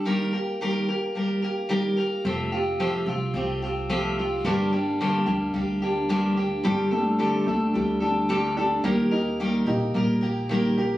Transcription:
<<
  \new Staff \with { instrumentName = "Steel-string acoustic guitar" } { \time 4/4 \key g \minor \tempo 4 = 109 <ees g bes g' bes'>8 <bes g' bes'>8 <ees g bes g' bes'>8 <bes g' bes'>8 <g bes g' bes'>8 <bes g' bes'>8 <ees g bes g' bes'>8 <bes g' bes'>8 | <f a c' f' g'>8 <c' f' g'>8 <f a c' f' g'>8 <c' f' g'>8 <a c' f' g'>8 <c' f' g'>8 <f a c' f' g'>8 <c' f' g'>8 | <g, d g bes d' g'>8 <g bes d' g'>8 <g, d g bes d' g'>8 <g bes d' g'>8 <g bes d' g'>8 <g bes d' g'>8 <g, d g bes d' g'>8 <g bes d' g'>8 | <g, d g d' g' a'>8 <g d' g' a'>8 <g, d g d' g' a'>8 <g d' g' a'>8 <g d' g' a'>8 <g d' g' a'>8 <g, d g d' g' a'>8 <g d' g' a'>8 |
<ees g bes g' bes'>8 <bes g' bes'>8 <ees g bes g' bes'>8 <bes g' bes'>8 <g bes g' bes'>8 <bes g' bes'>8 <ees g bes g' bes'>8 <bes g' bes'>8 | }
  \new Staff \with { instrumentName = "Upright piano" } { \time 4/4 \key g \minor r1 | r1 | r1 | g8 a8 g8 a8 g8 d'8 g8 d'8 |
bes8 ees'8 bes8 ees'8 bes8 g'8 bes8 g'8 | }
  \new Staff \with { instrumentName = "Upright bass" } { \clef bass \time 4/4 \key g \minor r1 | f,,4. c,8 c,2 | g,,4. d,8 d,2 | g,,4. d,8 d,2 |
ees,4. bes,,8 bes,,2 | }
>>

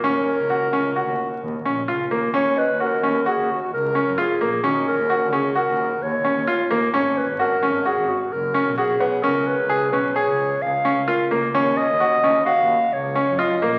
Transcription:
<<
  \new Staff \with { instrumentName = "Celesta" } { \time 5/4 \key ees \minor \tempo 4 = 130 r1 r4 | r8 ees''2. r4. | r1 r4 | r1 r8 des''8~ |
des''8 r2. r8 bes'4~ | bes'8 r4 ees''2. r8 | }
  \new Staff \with { instrumentName = "Clarinet" } { \time 5/4 \key ees \minor bes'1 r4 | des''8 ces''8 bes'4 aes'8 ges'8 bes'4 aes'4 | ges'8 bes'4 aes'8 bes'4 des''4. r8 | des''8 ces''8 bes'4 aes'8 ges'8 bes'4 aes'4 |
bes'8 ces''4 ces''8 des''4 f''4. r8 | des''8 ees''4. f''4 des''4 ees''4 | }
  \new Staff \with { instrumentName = "Grand piano" } { \time 5/4 \key ees \minor des'4 ges'8 des'8 ges'4 r8 des'8 f'8 bes8 | des'4 ges'8 des'8 ges'4 r8 des'8 f'8 bes8 | des'4 ges'8 des'8 ges'4 r8 des'8 f'8 bes8 | des'4 ges'8 des'8 ges'4 r8 des'8 ges'8 ces'8 |
des'4 aes'8 des'8 aes'4 r8 des'8 f'8 bes8 | des'4 ges'8 des'8 ges'4 r8 des'8 f'8 bes8 | }
  \new Staff \with { instrumentName = "Double bass" } { \clef bass \time 5/4 \key ees \minor ees,8 r16 des,8 r16 des,8. ees,8 r16 ees,8 bes,,8 des,8 ees,8 | ees,8. ees,8. ees,8 r16 ees,8. des,8. ges,8 r16 bes,,8 | ees8. ees,8. des,8. ees,8. ees,8 r16 ees,8 r16 ees,16 r16 | aes,,8. aes,,8. aes,,8 r16 aes,,8. ges,,8. ces,8 r16 ces,8 |
des,8. des,8. ces,8. des,8. des,8 r16 des,8 r16 des,16 r16 | ees,8. ees,8. ees,8 r16 ees,8. des,8. ges,8 r16 bes,,8 | }
>>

